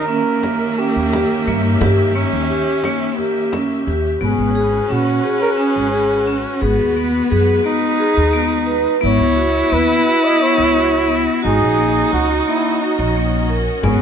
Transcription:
Already playing: D#3 C#4 G4 A#4 E5
0.08 A#3 C#4
0.43 A#4, frame drum
0.78 C#4 G4
0.96 D#2
1.12 G4, frame drum
1.47 G2 A#3
1.81 G2 G4, frame drum
2.15 A#3 C#4
2.33 D#2
2.50 G4, frame drum
2.84 A#3, frame drum
3.18 A#3 G4, frame drum
3.53 C#4, frame drum
3.86 D#2 G4, frame drum
4.21 G#1 B3 C#4 F#4 B4
4.25 G#4
4.38 G#1
4.55 G#4
4.89 A#2 C#4 F#4
5.23 G#4
5.42 A#4
5.57 C#4 G#4
5.76 G#1
5.92 G#4
6.27 C#4
6.61 G#1 G#3 B3 G#4 B4
6.79 D#2
6.96 B3
7.30 F#2 G#4
7.64 B3 D#4
7.99 G#4
8.17 D#2
8.33 B3
8.67 B4
9.01 G#1 B3 E4 F#4
9.06 C#5
9.20 C#2
9.36 F#4
9.70 D#2 B3 B4
10.04 F#4
10.25 D#5
10.39 B3 C#5
10.58 C#2
10.74 F#4
11.08 B3
11.42 G#1 C#4 D#4 F#4 G#4 D#5
11.61 A#1
11.78 A#3
12.12 C#2 F#4
12.47 A#3 E4
12.82 D#4 F#4
12.99 A#1
13.16 A#3
13.49 A#4
13.83 G#1 B3 C#4 G#4 B4, frame drum

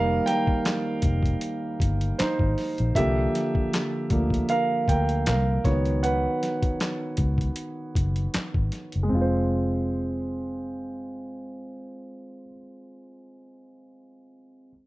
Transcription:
Already playing: F1 D#3 G3 A#3 G4 A#4 D#5 F5
0.26 A#4 G5, snare, closed hi-hat
0.47 kick
0.65 snare, clap, closed hi-hat
1.02 F1, kick, closed hi-hat
1.23 kick, closed hi-hat
1.41 closed hi-hat
1.80 G1, kick, closed hi-hat
2.01 closed hi-hat
2.19 D#4 C5, muted fingered electric bass stroke, snare, clap, closed hi-hat
2.39 G#1, kick
2.58 snare, open hi-hat
2.78 A#1, closed hi-hat
2.95 C2 D3 F3 A#3 G4 E5, kick, closed hi-hat
3.35 snare, closed hi-hat
3.55 kick
3.73 snare, clap, closed hi-hat
4.10 D2 D3 F3 A#3, kick, closed hi-hat
4.30 kick, closed hi-hat
4.49 A#4 F5, closed hi-hat
4.88 D2 A#4 G5, kick, closed hi-hat
5.09 closed hi-hat
5.26 C2 A#4 F5, snare, clap, closed hi-hat
5.65 C#2 D#3 F#3 B3 F#4 C#5, kick, snare, closed hi-hat
5.85 closed hi-hat
6.03 B4 F#5, closed hi-hat
6.43 snare, closed hi-hat
6.62 kick, closed hi-hat
6.80 snare, clap, closed hi-hat
7.17 C#2, kick, closed hi-hat
7.38 kick, closed hi-hat
7.56 closed hi-hat
7.95 F#1, kick, closed hi-hat
8.16 closed hi-hat
8.34 muted fingered electric bass stroke, snare, clap, closed hi-hat
8.54 G#1, kick
8.72 snare, closed hi-hat
8.92 F#1, closed hi-hat
9.03 G#3
9.09 F1 C4
9.15 F4
9.21 C5

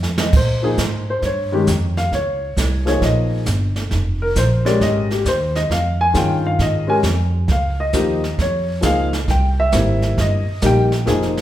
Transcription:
Already playing: F2
0.03 snare
0.18 D#5, snare
0.33 A#2 C5, brush sweep, kick, snare, crash
0.62 F3 A#3 D#4 G#4
0.78 G#2, kick, snare, hi-hat pedal
1.10 C5
1.22 G2 C#5, brush sweep, kick, snare
1.52 D#3 G#3 C#4 G4
1.67 F2, kick, snare, hi-hat pedal
1.97 F5, snare
2.12 C#2 C#5, brush sweep, kick, snare
2.56 C2, kick, snare, hi-hat pedal
2.85 F3 A#3 D#4 G#4 C#5, snare
3.01 A#1 D#5, brush sweep, kick, snare
3.46 G1, kick, snare, hi-hat pedal
3.76 snare
3.91 F1, brush sweep, kick, snare
4.22 A#4
4.36 A#1 C5, kick, snare, hi-hat pedal
4.65 G#3 C#4 G4 A#4 D5, snare
4.81 G#1 D#5, brush sweep, kick, snare
5.11 G4, snare
5.25 D#2 C5, kick, snare, hi-hat pedal
5.55 D#5, snare
5.69 F2 F5, brush sweep, kick, snare
6.01 G#5
6.13 G2 D#3 C#4 F4 G#4 G5, kick, snare, hi-hat pedal
6.47 F5
6.59 G#2 D#5, brush sweep, kick, snare
6.87 G#3 C#4 G4 A#4 G#5
7.03 F2, kick, snare, hi-hat pedal
7.48 C#2 F5, brush sweep, kick, snare
7.80 D#5
7.93 D#2 F3 A#3 D#4 G4, kick, snare, hi-hat pedal
8.24 snare
8.38 F2 C#5, brush sweep, kick, snare
8.81 C#2 F3 A#3 D#4 G#4, kick, snare, hi-hat pedal
8.85 F5
9.13 snare
9.28 C2 G5, brush sweep, kick, snare
9.60 E5
9.72 G#1 G3 A#3 C4 E4, kick, snare, hi-hat pedal
10.02 snare
10.18 G1 D#5, brush sweep, kick, snare
10.47 muted upright bass stroke
10.62 A#1 G3 A#3 D#4 G4, kick, snare, hi-hat pedal
10.66 G5
10.92 snare
11.06 F1 F3 A#3 D#4 G#4, brush sweep, kick, snare
11.22 snare
11.37 snare

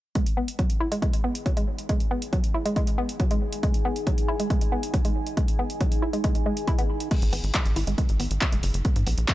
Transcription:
0.15 G#3 D#4, kick, closed hi-hat
0.26 closed hi-hat
0.37 B3 G#4
0.48 closed hi-hat
0.58 F#3 G#5, kick, closed hi-hat
0.70 closed hi-hat
0.80 E4
0.92 G#3, closed hi-hat
1.02 G#3, kick, closed hi-hat
1.13 closed hi-hat
1.24 B3
1.35 closed hi-hat
1.46 F#3, kick, closed hi-hat
1.57 G#3, closed hi-hat
1.79 closed hi-hat
1.89 G#3, kick, closed hi-hat
2.00 closed hi-hat
2.11 B3
2.22 closed hi-hat
2.33 F#3, kick, closed hi-hat
2.44 closed hi-hat
2.54 E4
2.66 G#3, closed hi-hat
2.76 G#3, kick, closed hi-hat
2.87 closed hi-hat
2.98 B3
3.09 closed hi-hat
3.20 F#3, kick, closed hi-hat
3.31 G#3, closed hi-hat
3.52 closed hi-hat
3.63 G#3, kick, closed hi-hat
3.74 closed hi-hat
3.85 B3
3.96 closed hi-hat
4.07 F#3, kick, closed hi-hat
4.18 closed hi-hat
4.28 E4
4.40 G#3, closed hi-hat
4.50 G#3, kick, closed hi-hat
4.61 closed hi-hat
4.72 B3
4.83 closed hi-hat
4.94 F#3, kick, closed hi-hat
5.05 G#3, closed hi-hat
5.27 closed hi-hat
5.37 G#3, kick, closed hi-hat
5.48 closed hi-hat
5.59 B3
5.70 closed hi-hat
5.81 F#3, kick, closed hi-hat
5.92 closed hi-hat
6.02 E4
6.13 G#3, closed hi-hat
6.24 G#3, kick, closed hi-hat
6.35 closed hi-hat
6.46 G#3
6.57 closed hi-hat
6.68 E4, kick, closed hi-hat
6.79 B3, closed hi-hat
7.00 closed hi-hat
7.11 G#3, kick, closed hi-hat, crash
7.22 G#1, closed hi-hat
7.33 G#1 B3, open hi-hat
7.44 G#1, closed hi-hat
7.55 F#3, kick, clap, closed hi-hat
7.66 G#1, closed hi-hat
7.76 G#1 E4, open hi-hat
7.87 G#1 G#3, closed hi-hat
7.98 G#3, kick, closed hi-hat
8.09 G#1, closed hi-hat
8.20 G#1 B3, open hi-hat
8.31 G#1, closed hi-hat
8.41 F#3, kick, clap, closed hi-hat
8.52 F#1 G#3, closed hi-hat
8.63 F#1, open hi-hat
8.74 F#1, closed hi-hat
8.85 G#3, kick, closed hi-hat
8.96 G#2, closed hi-hat
9.07 A#1 B3, open hi-hat
9.18 A#1, closed hi-hat
9.28 F#3, kick, clap, closed hi-hat

